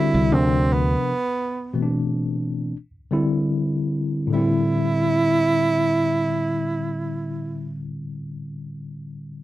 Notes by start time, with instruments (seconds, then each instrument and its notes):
Already playing: tine electric piano D3 G3 C4 E4 F#4, tenor saxophone E4
0.14 fretless electric bass C2
0.31 fretless electric bass D2, tine electric piano C3 F3 D4 A#4, tenor saxophone C4
0.73 tenor saxophone B3
1.74 tine electric piano B2 E3 A3 C4
1.82 tine electric piano D4
3.11 tine electric piano D3 G3 C4 E4
4.27 tine electric piano A2 D3
4.32 tine electric piano G3 C4, tenor saxophone E4
4.37 tine electric piano E4